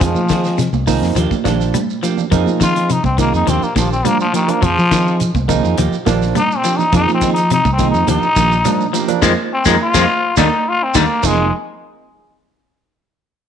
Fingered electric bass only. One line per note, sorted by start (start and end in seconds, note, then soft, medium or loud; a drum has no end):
0.01 0.14 F2 medium
0.15 0.67 F3 medium
0.73 0.99 C2 medium
1.02 1.15 F2 medium
1.15 1.29 D#2 medium
1.46 1.71 A#1 medium
2.32 2.45 F2 loud
2.46 2.98 F3 medium
3.04 3.30 C2 medium
3.34 3.46 F2 medium
3.47 3.60 D#2 medium
3.63 muted fingered electric bass stroke soft
3.76 4.02 A#1 loud
4.62 4.75 F2 medium
4.79 5.30 F3 medium
5.34 5.60 C2 medium
5.65 5.77 F2 medium
5.78 5.91 D#2 medium
6.07 6.32 A#1 loud
6.93 7.06 F2 loud
7.07 7.59 F3 medium
7.65 7.91 C2 medium
7.94 8.06 F2 medium
8.08 8.21 D#2 medium
8.22 muted fingered electric bass stroke soft
8.36 8.62 A#1 medium
9.22 9.33 F2 loud
9.66 9.76 F2 loud
9.94 10.05 F2 loud
10.37 10.48 D#2 medium
10.95 11.06 D#2 medium
11.23 11.50 F1 loud